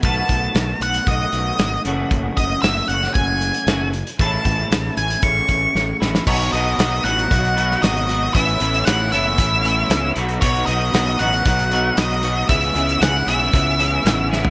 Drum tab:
CC |----------------|----------------|----------------|x---------------|
HH |x-x-x-xxx-x-x-x-|x-x-x-x-x-xxx-xx|x-x-x-xxx-x-----|-xx-xxxxxxx-xxx-|
SD |----o-------o---|----o--o----o---|----o-------o-oo|----o------oo---|
FT |----------------|----------------|----------------|----------------|
BD |o-o-----o-------|o-o-----o-------|o-o-----o-o-----|o-------o-------|

CC |----------------|----------------|----------------|
HH |xxxxx-x-x-x-x-xx|xxx-xxxxxxx-xxx-|xxxxx-x-x-x-x---|
SD |----o-------o---|----o-------o---|----o-------o-o-|
FT |----------------|----------------|---------------o|
BD |o-------o-------|o-------o-------|o-------o-------|